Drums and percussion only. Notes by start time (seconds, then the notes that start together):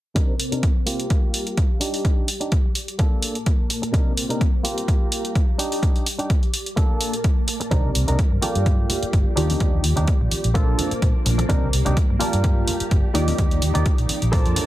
0.16 kick, closed hi-hat
0.40 open hi-hat
0.52 closed hi-hat
0.63 kick, closed hi-hat
0.87 open hi-hat
1.00 closed hi-hat
1.10 kick, closed hi-hat
1.34 open hi-hat
1.47 closed hi-hat
1.57 kick, closed hi-hat
1.81 open hi-hat
1.94 open hi-hat
2.05 kick, closed hi-hat
2.28 open hi-hat
2.41 closed hi-hat
2.52 kick, closed hi-hat
2.75 open hi-hat
2.88 closed hi-hat
2.99 kick, closed hi-hat
3.22 open hi-hat
3.35 closed hi-hat
3.46 kick, closed hi-hat
3.70 open hi-hat
3.83 closed hi-hat
3.94 kick, closed hi-hat
4.17 open hi-hat
4.30 closed hi-hat
4.41 kick, closed hi-hat
4.65 open hi-hat
4.78 closed hi-hat
4.88 kick, closed hi-hat
5.12 open hi-hat
5.25 closed hi-hat
5.35 kick, closed hi-hat
5.59 open hi-hat
5.72 open hi-hat
5.83 kick, closed hi-hat
5.96 closed hi-hat
6.06 open hi-hat
6.19 closed hi-hat
6.30 kick, closed hi-hat
6.43 closed hi-hat
6.54 open hi-hat
6.66 closed hi-hat
6.77 kick, closed hi-hat
7.01 open hi-hat
7.13 closed hi-hat
7.24 kick, closed hi-hat
7.48 open hi-hat
7.61 closed hi-hat
7.71 kick, closed hi-hat
7.95 open hi-hat, tambourine
8.08 closed hi-hat, tambourine, low conga
8.18 kick, closed hi-hat, tambourine
8.42 open hi-hat, tambourine, high conga
8.55 closed hi-hat, tambourine
8.66 kick, closed hi-hat
8.89 open hi-hat, tambourine, low conga
9.02 closed hi-hat, tambourine
9.13 kick, closed hi-hat
9.26 tambourine
9.37 open hi-hat, tambourine
9.49 open hi-hat, tambourine, high conga
9.60 kick, closed hi-hat
9.84 open hi-hat, tambourine
9.97 closed hi-hat, tambourine, low conga
10.07 kick, closed hi-hat
10.21 tambourine
10.31 open hi-hat, tambourine, high conga
10.44 closed hi-hat
10.55 kick, closed hi-hat
10.68 tambourine
10.79 open hi-hat, tambourine, high conga, low conga
10.91 closed hi-hat, tambourine
11.02 kick, closed hi-hat
11.15 tambourine
11.26 open hi-hat, tambourine, low conga
11.38 closed hi-hat, tambourine, high conga
11.50 kick, closed hi-hat
11.73 open hi-hat, tambourine
11.86 closed hi-hat, tambourine, low conga
11.96 kick, closed hi-hat, tambourine
12.20 open hi-hat, tambourine, high conga
12.33 closed hi-hat, tambourine
12.44 kick, closed hi-hat
12.68 open hi-hat, tambourine, low conga
12.80 closed hi-hat, tambourine
12.91 kick, closed hi-hat
13.04 tambourine
13.15 open hi-hat, tambourine
13.27 open hi-hat, tambourine, high conga
13.38 kick, closed hi-hat
13.51 closed hi-hat, tambourine
13.62 open hi-hat, tambourine
13.75 closed hi-hat, tambourine, low conga
13.85 kick, closed hi-hat, tambourine
13.98 closed hi-hat, tambourine
14.09 open hi-hat, tambourine, high conga
14.22 closed hi-hat, tambourine
14.33 kick, open hi-hat
14.46 closed hi-hat
14.56 open hi-hat, tambourine, high conga, low conga